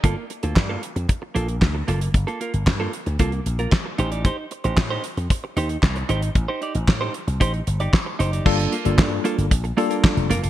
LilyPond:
<<
  \new Staff \with { instrumentName = "Clean electric guitar" } { \time 4/4 \key g \minor \tempo 4 = 114 <bes f' a'>8 r16 <bes f' a'>16 r16 <bes f' a'>8 r8. <bes f' a'>8 r8 <bes f' a'>8 | r16 <bes f' a'>16 <bes f' bes'>16 r8 <bes f' a'>8 r16 <bes f' a'>8 r16 <bes f' bes'>16 r8 <ees' g' c''>16 <ees' g' d''>16 | <ees' g' c''>8 r16 <ees' g' c''>16 r16 <ees' g' c''>8 r8. <ees' g' c''>8 r8 <ees' g' c''>8 | r16 <ees' g' c''>16 <ees' g' d''>16 r8 <ees' g' c''>8 r16 <ees' g' c''>8 r16 <ees' g' d''>16 r8 <ees' g' c''>16 <ees' g' d''>16 |
<bes f' a'>8 <bes f' a'>16 <bes f' a'>16 r8 <bes f' a'>8 r8 <bes f' a'>16 <bes f' bes'>16 r8 <bes f' bes'>16 <bes f' a'>16 | }
  \new Staff \with { instrumentName = "Tine electric piano" } { \time 4/4 \key g \minor r1 | r1 | r1 | r1 |
<g bes d' f' a'>8 r16 <g bes d' f' a'>4~ <g bes d' f' a'>16 r8 <g bes d' f' a'>4 r8 | }
  \new Staff \with { instrumentName = "Slap bass" } { \clef bass \time 4/4 \key g \minor g,,16 r8 d,16 g,8 r16 f,16 r8 bes,,8 d,8 fis,,8 | g,,16 r8 g,,16 g,8 r16 d,16 c,8 bes,,8 r8 a,,8~ | a,,16 r8 a,,16 a,8 r16 f,16 r8 ees,8 c,8 aes,,8 | a,,16 r8 a,,16 a,8 r16 c,16 a,,8 g,,8 r8 fis,,8 |
g,,8 r16 g,,16 g,8 r16 g,,16 bes,,8 r8. f,,16 f,,16 fis,,16 | }
  \new DrumStaff \with { instrumentName = "Drums" } \drummode { \time 4/4 <hh bd>8 hh16 hh16 <hc bd sn>8 hh16 hh16 <hh bd>8 hh16 hh16 <hc bd sn>8 hh16 hh16 | <hh bd>16 hh16 hh16 hh16 <hc bd sn>8 hh16 hh16 <hh bd>16 hh16 hh16 hh16 <hc bd sn>8 hh16 hh16 | <hh bd>8 hh16 hh16 <hc bd sn>8 hh16 hh16 <hh bd>8 hh16 hh16 <hc bd sn>16 hh16 hh16 hh16 | <hh bd>8 hh16 hh16 <hc bd sn>8 hh16 hh16 <hh bd>16 hh16 hh16 hh16 <hc bd sn>8 hh16 hh16 |
<cymc bd>16 hh16 hh16 hh16 <hc bd sn>8 hh16 hh16 <hh bd>16 hh16 hh16 hh16 <hc bd sn>16 hh16 hh16 hh16 | }
>>